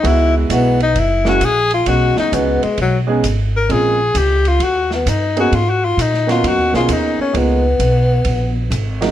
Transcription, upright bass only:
X:1
M:4/4
L:1/8
Q:"Swing" 1/4=132
K:Dbmix
V:1 name="Upright bass" clef=bass
D,,2 C,,2 G,,,2 B,,,2 | =B,,, z ^C,, z B,,,2 ^G,,,2 | B,,,2 D,,2 E,,2 =G,,2 | A,,2 B,,2 (3G,, E,, C,, E,, z |
D,,2 C,,2 B,,,2 A,,,2 |]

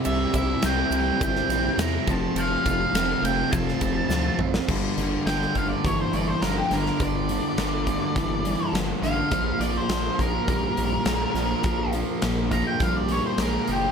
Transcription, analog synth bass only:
X:1
M:4/4
L:1/8
Q:1/4=103
K:Gdor
V:1 name="Analog synth bass" clef=bass
C,, C,, C,, C,, G,,, B,,, E,, F,,, | F,,, F,,, F,,, F,,, F,,, F,,, D,, A,,, | G,,, G,,, G,,, G,,, G,,, G,,, G,,, G,,, | G,,,2 G,,,2 G,,,2 G,,, A,,, |
B,,, B,,, B,,, B,,, B,,, B,,, B,,, B,,, | B,,,2 B,,,2 B,,,2 B,,, ^F,,, |]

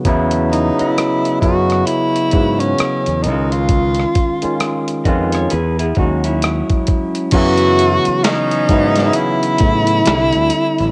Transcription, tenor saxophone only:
X:1
M:4/4
L:1/16
Q:"Swing 16ths" 1/4=66
K:E
V:1 name="Tenor saxophone"
z2 D E3 F2 E3 C3 D ^E- | ^E4- E z8 z3 | F4 D4 E8 |]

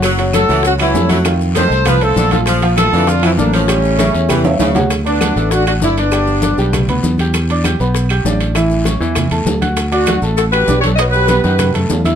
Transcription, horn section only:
X:1
M:4/4
L:1/8
Q:1/4=197
K:D
V:1 name="Horn section"
z2 [FA]2 [CF] [CE]2 [CE] | z2 [A=c]2 [=FB] [FA]2 [FA] | z2 [=FA]2 [DF] [=CE] [_B,D] [A,^C]- | [A,C]6 z2 |
z [B,D]3 [DF] [DF] [A,E] [B,D]- | [B,D]4- [B,D] z3 | z8 | z8 |
z [DF]2 z [FA] [GB]2 [Ac] | [B^d] [GB]2 [GB]2 z3 |]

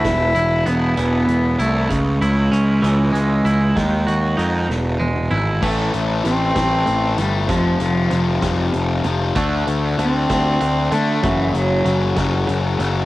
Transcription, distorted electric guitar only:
X:1
M:6/8
L:1/8
Q:3/8=64
K:Ephr
V:1 name="Distorted electric guitar" clef=bass
z6 | z6 | z6 | [A,,E,A,]2 [A,,E,A,] [A,,E,A,]2 [A,,E,A,] |
[F,,C,F,]2 [F,,C,F,] [F,,C,F,]2 [F,,C,F,] | [D,A,D]2 [D,A,D] [D,A,D]2 [D,A,D] | [^F,,^C,^F,]2 [F,,C,F,] [F,,C,F,]2 [F,,C,F,] |]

